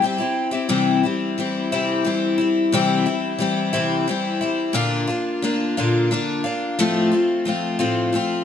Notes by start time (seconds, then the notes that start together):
0.02 G3 C4 E4 G4
0.18 C4 E4 G4
0.51 C4 E4 G4
0.69 C3 E3 G3 C4 E4
1.03 G3 C4 E4
1.38 E3 G3 C4 E4
1.72 C3 E3 G3 C4 E4
2.04 E3 G3 C4 E4
2.38 G3 C4 E4
2.72 C3 E3 G3 C4 E4
3.06 G3 C4 E4
3.39 E3 G3 C4 E4
3.73 C3 E3 G3 C4 E4
4.08 E3 G3 C4 E4
4.41 G3 C4 E4
4.73 A#2 D3 A#3 D4 F4
5.07 A#3 D4 F4
5.42 D3 A#3 D4 F4
5.77 A#2 D3 A#3 D4 F4
6.11 D3 A#3 D4 F4
6.44 A#3 D4 F4
6.79 A2 F3 A3 C4 F4
7.12 A3 C4 F4
7.45 F3 A3 C4 F4
7.79 A2 F3 A3 C4 F4
8.13 F3 A3 C4 F4